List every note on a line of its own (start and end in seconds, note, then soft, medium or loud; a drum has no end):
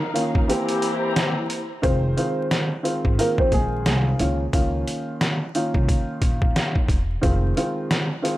0.00 0.12 F3 medium
0.00 0.12 D#4 medium
0.00 0.47 D#4 medium
0.00 0.12 A#4 loud
0.00 0.47 A#4 medium
0.00 0.45 F5 medium
0.14 0.48 D#3 loud
0.14 0.47 A#3 medium
0.14 0.48 C#4 medium
0.14 0.49 F4 loud
0.14 closed hi-hat medium
0.35 kick loud
0.48 1.58 E3 loud
0.48 1.48 E3 medium
0.48 1.58 A#3 medium
0.48 1.59 C4 medium
0.48 1.48 C4 medium
0.48 1.82 E4 medium
0.48 1.48 G4 medium
0.48 1.59 G4 loud
0.48 1.82 C5 medium
0.48 1.82 A#5 medium
0.48 closed hi-hat medium
0.69 closed hi-hat medium
0.82 closed hi-hat medium
1.16 snare loud
1.16 closed hi-hat medium
1.50 closed hi-hat medium
1.82 2.12 F1 loud
1.82 2.14 D#3 medium
1.82 2.14 G#3 medium
1.82 2.15 C4 medium
1.82 2.67 C4 medium
1.82 2.15 F4 medium
1.82 2.67 C5 medium
1.82 kick loud
1.82 closed hi-hat medium
2.17 2.66 D#3 loud
2.17 2.66 G#3 medium
2.17 2.66 C4 medium
2.17 2.66 F4 loud
2.17 closed hi-hat medium
2.51 snare loud
2.51 closed hi-hat medium
2.83 3.15 D#3 medium
2.83 3.15 G#3 medium
2.83 3.16 C4 medium
2.83 3.16 F4 loud
2.83 closed hi-hat medium
3.05 3.16 G#1 medium
3.05 kick medium
3.18 4.18 D#3 medium
3.18 4.20 G#3 medium
3.18 3.37 A#3 medium
3.18 4.20 C4 medium
3.18 4.19 F4 loud
3.18 3.36 A#4 medium
3.18 closed hi-hat medium
3.38 3.52 C4 medium
3.38 3.51 C5 medium
3.38 kick loud
3.52 3.86 A#1 medium
3.52 3.83 G#3 medium
3.52 3.83 G#4 medium
3.52 kick medium
3.52 closed hi-hat medium
3.86 4.14 C2 medium
3.86 4.17 G#3 medium
3.86 4.17 G#4 medium
3.86 snare loud
3.86 closed hi-hat medium
4.19 4.48 C#2 loud
4.19 4.42 D#3 medium
4.19 4.42 A#3 medium
4.19 4.42 C#4 medium
4.19 4.43 F4 loud
4.19 closed hi-hat medium
4.53 4.82 C#2 loud
4.53 5.32 D#3 medium
4.53 5.33 A#3 medium
4.53 5.33 C#4 medium
4.53 5.33 F4 loud
4.53 kick loud
4.53 closed hi-hat medium
4.87 closed hi-hat medium
5.21 snare loud
5.21 closed hi-hat medium
5.55 6.95 D#3 medium
5.55 6.95 A#3 medium
5.55 6.95 C#4 medium
5.55 6.96 F4 loud
5.55 closed hi-hat medium
5.74 5.86 C2 medium
5.74 kick medium
5.89 kick medium
5.89 closed hi-hat medium
6.22 6.50 A#1 medium
6.22 kick medium
6.22 closed hi-hat medium
6.42 kick loud
6.56 snare loud
6.56 closed hi-hat medium
6.75 kick medium
6.88 7.17 E1 medium
6.88 kick loud
6.88 closed hi-hat medium
7.21 7.52 F1 loud
7.21 7.54 D#3 loud
7.21 7.54 G#3 medium
7.21 7.54 C4 medium
7.21 7.54 F4 loud
7.21 kick loud
7.21 closed hi-hat medium
7.56 8.05 D#3 loud
7.56 8.05 G#3 medium
7.56 8.06 C4 medium
7.56 8.06 F4 loud
7.56 closed hi-hat medium
7.91 snare loud
7.91 closed hi-hat medium
8.22 8.38 D#3 medium
8.22 8.38 G#3 medium
8.22 8.38 C4 medium
8.22 8.38 F4 loud
8.22 closed hi-hat medium